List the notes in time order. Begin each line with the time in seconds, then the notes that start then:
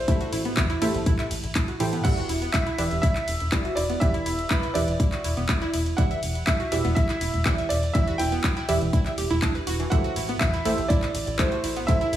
Already playing: C5
0.08 A1 A3 E4 G4 A4 C5 E5, kick, closed hi-hat
0.21 F#4, closed hi-hat
0.33 A1 E4, open hi-hat, ride
0.45 B3, closed hi-hat
0.57 E2 E4, kick, clap, closed hi-hat
0.70 E4, closed hi-hat
0.82 A1 A3 E4 G4 A4 C5 E5, open hi-hat, ride
0.94 A1, closed hi-hat
1.06 A1 E4, kick, closed hi-hat
1.19 E5, clap, closed hi-hat
1.31 A1, open hi-hat, ride
1.44 A1, closed hi-hat
1.55 A1 E4, kick, clap, closed hi-hat
1.68 F#4, closed hi-hat
1.80 A2 E3 E4 G4 A4 C5 G5, open hi-hat, ride
1.93 B3, closed hi-hat
2.04 E1 E3 E4 G4 B4 D5 E5 F#5, kick, closed hi-hat, crash
2.17 F#4, closed hi-hat
2.29 E1 E4, open hi-hat, ride
2.42 B3, closed hi-hat
2.52 B1 E4 E5, kick, clap, closed hi-hat
2.67 E4, closed hi-hat
2.78 E1 E3 E4 G4 B4 D5 E5, open hi-hat, ride
2.91 E1, closed hi-hat
3.02 E1 E4 E5, kick, closed hi-hat
3.16 E5, clap, closed hi-hat
3.28 E1, open hi-hat, ride
3.40 E1, closed hi-hat
3.52 E1 E3 E4 G4 B4 D5 E5, kick, clap, closed hi-hat
3.65 F#4, closed hi-hat
3.75 E1 E4 D5, open hi-hat, ride
3.90 B3, closed hi-hat
4.00 E1 E3 E4 G4 B4 D5 E5, kick, closed hi-hat
4.14 E4, closed hi-hat
4.26 E1 E4, open hi-hat, ride
4.39 closed hi-hat
4.49 B1 E4 B4, kick, clap, closed hi-hat
4.63 E5, closed hi-hat
4.74 E1 E3 E4 G4 B4 D5 E5, open hi-hat, ride
4.88 E1, closed hi-hat
5.00 E1 E4, kick, closed hi-hat
5.12 F#4, clap, closed hi-hat
5.24 E1 E4, open hi-hat, ride
5.37 E1 B3, closed hi-hat
5.49 E1 E4, kick, clap, closed hi-hat
5.62 E4, closed hi-hat
5.74 E1 E4, open hi-hat, ride
5.86 closed hi-hat
5.97 E1 E3 E4 G4 B4 D5 E5 F#5, kick, closed hi-hat
6.11 E5, closed hi-hat
6.23 E1, open hi-hat, ride
6.35 closed hi-hat
6.46 B1 E4 E5, kick, clap, closed hi-hat
6.60 F#4, closed hi-hat
6.72 E1 E3 E4 G4 B4 D5 E5, open hi-hat, ride
6.85 E1 B3, closed hi-hat
6.95 E1 E4 E5, kick, closed hi-hat
7.09 E4, clap, closed hi-hat
7.21 E1 E4, open hi-hat, ride
7.34 E1, closed hi-hat
7.45 E1 E3 E4 G4 B4 D5 E5, kick, clap, closed hi-hat
7.58 E5, closed hi-hat
7.69 E1 D5, open hi-hat, ride
7.83 closed hi-hat
7.93 E1 E3 E4 G4 B4 D5 E5, kick, closed hi-hat
8.07 F#4, closed hi-hat
8.18 E1 E4 G5, open hi-hat, ride
8.32 B3, closed hi-hat
8.44 B1 E4, kick, clap, closed hi-hat
8.57 E4, closed hi-hat
8.69 E1 E3 E4 G4 B4 D5 E5, open hi-hat, ride
8.81 E1, closed hi-hat
8.93 E1 E4, kick, closed hi-hat
9.06 E5, clap, closed hi-hat
9.18 E1 G4, open hi-hat, ride
9.30 E1 E4, closed hi-hat
9.42 E1 D4, kick, clap, closed hi-hat
9.55 B4, closed hi-hat
9.67 E1 F#4, open hi-hat, ride
9.80 E3, closed hi-hat
9.90 A1 A3 E4 G4 A4 C5 E5 F#5, kick, closed hi-hat
10.04 F#4, closed hi-hat
10.16 A1 E4, open hi-hat, ride
10.29 B3, closed hi-hat
10.39 E2 E4 E5, kick, clap, closed hi-hat
10.54 E4, closed hi-hat
10.65 A1 A3 E4 G4 A4 C5 E5, open hi-hat, ride
10.78 A1, closed hi-hat
10.88 A1 E4 D5, kick, closed hi-hat
11.03 E5, clap, closed hi-hat
11.15 A1, open hi-hat, ride
11.27 A1, closed hi-hat
11.38 A1 A3 E4 G4 A4 C5 E5, kick, clap, closed hi-hat
11.52 F#4, closed hi-hat
11.64 A1 E4, open hi-hat, ride
11.76 B3, closed hi-hat
11.87 A1 A3 E4 G4 A4 C5 E5, kick, closed hi-hat
12.01 E4, closed hi-hat
12.13 A1 E4, open hi-hat, ride